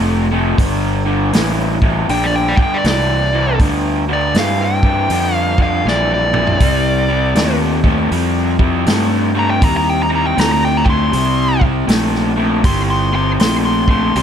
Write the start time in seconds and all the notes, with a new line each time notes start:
Already playing: F1 C3 A3
0.31 C3 A3
0.58 G1 G2 D3, kick, open hi-hat
1.05 G2 D3
1.33 A1 G2 E3, snare, open hi-hat
1.82 G2 E3, kick
2.09 A#1 G2 D3 G5, open hi-hat
2.24 D5
2.36 G5
2.48 D5
2.56 G2 D3, muted fingered electric bass stroke, kick
2.63 G5
2.74 D5
2.84 C2 G2 E3 D5, snare, open hi-hat
3.33 G2 E3
3.59 D2 G2 D3, kick, open hi-hat
4.09 G2 D3
4.13 D5
4.34 G2 E3, snare, open hi-hat
4.39 F5
4.64 G5
4.83 G2 E3, kick
5.10 F2 G2 D3, open hi-hat
5.34 F5
5.58 G2 D3, kick
5.62 F5
5.85 A#1 G2 E3 D5, snare
6.14 D5
6.33 G2 E3, mid tom
6.47 floor tom
6.60 C2 C3 G3, kick, open hi-hat
7.09 C3 G3
7.35 D#2 C3 A3, snare, open hi-hat
7.84 C3 A3, kick
8.11 F2 C3 G3, open hi-hat
8.59 C3 G3, kick
8.86 G2 C3 A3, snare, open hi-hat
9.35 C3 A3
9.39 A#5
9.50 G5
9.61 D#2 C3 G3 A#5, kick, open hi-hat
9.77 A#5
9.90 G5
10.03 A#5
10.10 C3 G3
10.15 A#5
10.27 G5
10.36 D2 C3 A3 A#5, snare, open hi-hat
10.52 A#5
10.65 G5
10.77 A#5
10.84 C3 A3, kick
10.90 C6
11.12 C2 C3 G3, open hi-hat
11.60 C3 G3, kick
11.88 A#1 C3 A3, snare, open hi-hat
12.15 snare
12.36 C3 A3
12.64 G1 C3 G3 C6, kick, open hi-hat
12.90 C6
13.13 C3 G3 C6
13.39 A#1 C3 A3 C6, snare, open hi-hat
13.65 C6
13.88 C3 A3 C6, kick
14.15 C2 C3 G3 C6, open hi-hat